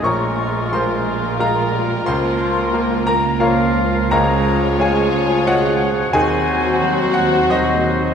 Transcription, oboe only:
\new Staff \with { instrumentName = "Oboe" } { \time 3/4 \key bes \dorian \tempo 4 = 89 bes'2 bes'4 | bes'4. r8 bes'4 | \key des \major des''4 des''2 | c''2 c''4 | }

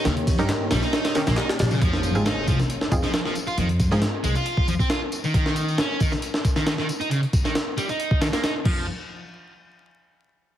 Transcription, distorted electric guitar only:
\new Staff \with { instrumentName = "Distorted electric guitar" } { \clef bass \time 4/4 \key f \minor \tempo 4 = 136 des16 r8 ees16 r8 g16 ees'8. ees16 bes16 ees'16 r8 des16 | f4 ees'8 f16 r4 f16 f16 f16 r16 f'16 | ees16 r8 f16 r8 aes16 f'8. f16 c'16 f'16 r8 ees16 | ees4 des'8 ees16 r4 ees16 ees16 ees16 r16 ees'16 |
des16 r8 ees16 r8 g16 ees'8. ees16 bes16 ees'16 r16 f8 | r1 | }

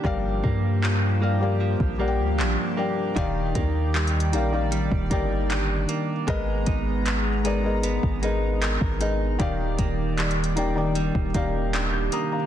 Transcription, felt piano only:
\new Staff \with { instrumentName = "Felt piano" } { \time 4/4 \key ees \major \tempo 4 = 77 << { r1 | r1 | r1 | r2. r16 <d''' g'''>16 <bes'' ees'''>16 <f'' bes''>16 | } \\ { <g g' bes' d'' f''>4~ <g g' bes' d'' f''>16 r16 <g g' bes' d'' f''>16 <g g' bes' d'' f''>8. <g g' bes' d'' ges'' g''>8. r16 <g g' bes' d'' g''>8 | <ees ees' g' d'' f''>4~ <ees ees' g' d'' f''>16 r16 <ees ees' g' d'' f''>16 <ees ees' g' d'' f''>8. <ees ees' g' d'' g''>4~ <ees ees' g' d'' g''>16 r16 | <aes aes' bes' ces'' ees''>4~ <aes aes' bes' ces'' ees''>16 r16 <aes aes' bes' ces'' d''>16 <aes aes' bes' ces'' ees''>8. <aes aes' bes' ces'' ees''>8. r16 <aes aes' bes' ces'' ees''>8 | <ees ees' g' d'' f''>4~ <ees ees' g' d'' f''>16 r16 <ees ees' g' d'' g''>16 <ees ees' g' d'' g''>8. <ees ees' g' d'' f''>4~ <ees ees' g' d'' f''>16 r16 | } >> }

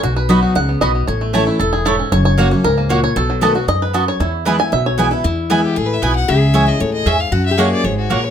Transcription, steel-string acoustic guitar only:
\new Staff \with { instrumentName = "Steel-string acoustic guitar" } { \clef bass \time 4/4 \key e \major \tempo 4 = 231 << { r4 <fis b dis' fis'>4 r2 | r4 <e a cis' e'>4 r2 | r4 <fis ais cis' fis'>8 <cis' fis'>8 r2 | r4 <dis a b fis'>8 <b fis'>8 r2 |
r4 <e gis b e'>8 <b e'>8 r4 <e gis b e'>8 <b e'>8 | r4 <e gis b e'>4 r2 | r4 <e gis cis' e'>8 <cis' e'>8 r2 | r4 <fis ais cis' fis'>4 r2 | } \\ { b,2 cis4 b,4 | a,2 a,4 gis,4 | fis,2 gis,4 ais,4 | b,2 gis,4 fis,4 |
e,2 b,2 | e,2 a,4 b,4 | cis2 a,4 gis,4 | fis,2 gis,4 ais,4 | } >> }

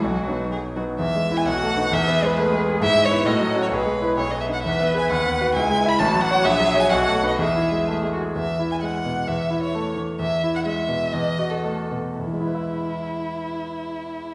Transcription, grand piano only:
\new Staff \with { instrumentName = "Grand piano" } { \time 2/4 \key e \major \tempo 4 = 129 b,,8 <fis b dis'>4 <fis b dis'>8 | \tuplet 3/2 { e,8 gis8 <b e'>8 b,,8 a8 <b dis'>8 } | \tuplet 3/2 { e,8 b8 gis8 a8 gis8 gis'8 } | \tuplet 3/2 { gis,8 gis8 <b e'>8 a,8 fis8 <cis' fis'>8 } |
\tuplet 3/2 { b,,8 gis8 <e' b'>8 b,,8 b8 <dis' b'>8 } | \tuplet 3/2 { e,8 b8 <gis' b'>8 dis,8 b8 <fis' b'>8 } | \tuplet 3/2 { cis,8 gis8 <e' e''>8 a,,8 fis8 <fis' cis''>8 } | \tuplet 3/2 { ais,,8 fis8 <fis' cis''>8 b,,8 a8 <dis' b'>8 } |
\tuplet 3/2 { e,8 e'8 gis8 a8 gis8 gis'8 } | e,8 e'8 gis8 b,8 | e,8 e'8 a8 e8 | e,8 e'8 gis8 b,8 |
e,8 fis'8 a8 b,8 | <e, e gis e' b' e''>2~ | <e, e gis e' b' e''>2 | }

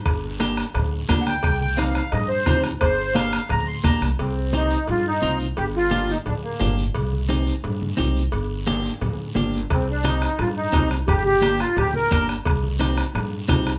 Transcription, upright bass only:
\new Staff \with { instrumentName = "Upright bass" } { \clef bass \time 4/4 \key c \minor \tempo 4 = 174 g,,2 d,4 d,4 | c,2 g,4 d,4 | g,,2 d,4 bes,,8 c,8 | c,2 g,4 c,4 |
g,,2 d,4 g,,4 | c,2 g,4 c,4 | g,,2 d,4 g,,4 | c,2 g,4 c,4 |
g,,2 d,4 g,,4 | c,2 g,4 c,4 | }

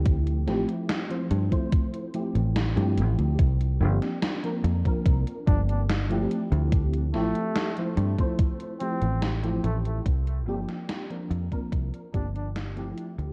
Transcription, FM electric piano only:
\new Staff \with { instrumentName = "FM electric piano" } { \time 4/4 \key c \mixolydian \tempo 4 = 72 <f a c' e' g'>8 <f a c' e' g'>8. <f a c' e' c''>8 <f a c' e' c''>8. <f a c' e' g'>8. <f a c' e' g'>8. | r8 <f bes c' d' g'>8. <f bes c' d' bes'>8 <f bes c' d' bes'>8. <f bes c' d' g'>8. <f a c' e' g'>8.~ | <f a c' e' g'>8 <f a c' e' g'>8. <f a c' e' c''>8 <f a c' e' c''>8. <f a c' e' g'>8. <f a c' e' g'>8. | r8 <f bes c' d' g'>8. <f bes c' d' bes'>8 <f bes c' d' bes'>8. <f bes c' d' g'>8. <f a c' e' g'>8. | }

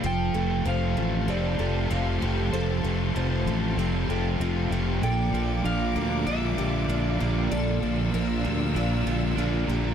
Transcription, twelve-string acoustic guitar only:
\new Staff \with { instrumentName = "Twelve-string acoustic guitar" } { \time 4/4 \key f \major \tempo 4 = 96 a'8 a'8 c''8 a'8 g'8 a'8 f'8 g'8 | a'8 a'8 c''8 a'8 g'8 a'8 f'8 g'8 | a'8 a'8 bes'8 g'8 f'8 g'8 f'8 g'8 | a'8 a'8 bes'8 g'8 f'8 g'8 f'8 g'8 | }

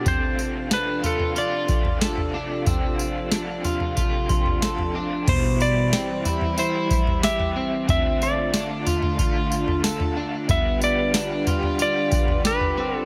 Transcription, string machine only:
\new Staff \with { instrumentName = "String machine" } { \time 4/4 \key d \dorian \tempo 4 = 92 <c f d' a'>1~ | <c f d' a'>1 | <e g e' g'>1 | <d a f' a'>1 |
<d g f' b'>1 | }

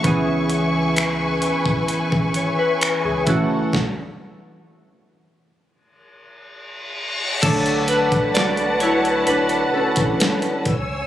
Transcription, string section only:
\new Staff \with { instrumentName = "String section" } { \time 4/4 \key b \dorian \tempo 4 = 65 << { <e'' cis'''>1 | r1 | <fis'' a''>2.~ <fis'' a''>8 <gis'' e'''>8 | } \\ { <b' gis''>2.~ <b' gis''>8 <a' fis''>8 | r1 | b'2.~ b'8 cis''8 | } >> }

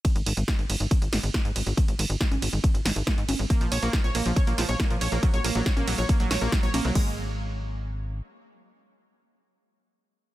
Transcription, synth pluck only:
\new Staff \with { instrumentName = "Synth pluck" } { \time 4/4 \key ges \lydian \tempo 4 = 139 r1 | r1 | bes16 f16 des''16 bes16 f16 des''16 bes16 f16 des''16 bes16 f16 des''16 bes16 f16 des''16 bes16 | ges16 des''16 bes16 ges16 des''16 bes16 ges16 des''16 bes16 ges16 des''16 bes16 ges16 des''16 bes16 ges16 |
aes8 r2. r8 | r1 | }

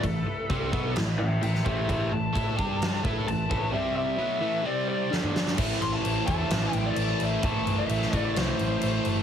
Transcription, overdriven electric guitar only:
\new Staff \with { instrumentName = "Overdriven electric guitar" } { \clef bass \time 4/4 \key a \minor \tempo 4 = 130 <a, e>8 r8 <c g c'>8 <b, fis b>8 <a, e>8 <a, e>8 <a, e>8 <a, e a>8 | <a, e a>8 <a, e>8 <a e' a'>8 <g d' g'>4 <a e' a'>8 <a, e>8 <a, e a>8 | <c g c'>4 <b, fis b>8 <a, e a>8 <c g c'>4 <g, d g>4 | <a, e a>4. <a, e a>2~ <a, e a>8 |
<a, e a>4. <a, e a>2~ <a, e a>8 | }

